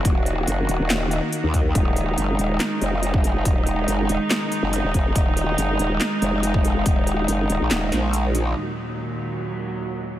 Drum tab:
HH |x-x-x-x-x-x-x-x-|x-x-x-x-x-x-x-x-|x-x-x-x-x-x-x-x-|x-x-x-x-x-x-x-x-|
CP |--------x-------|--------x-------|--------x-------|--------x-------|
SD |--------o-------|--------o-------|--------o-------|--------o-------|
BD |o-------------o-|o------------o--|o-------------o-|o------------o--|

HH |x-x-x-x-x-x-x-x-|----------------|
CP |--------x-------|----------------|
SD |--------o-o-----|----------------|
BD |o---------------|----------------|